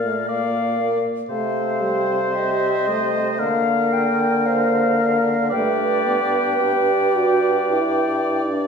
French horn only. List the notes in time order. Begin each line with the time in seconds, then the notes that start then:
0.04 A3
0.30 A#3
0.80 A#3
1.31 A3
1.81 G3
2.88 A3
3.41 A#3
5.53 A3
6.06 B3
6.61 G4
7.15 F#4
7.69 E4
8.46 D4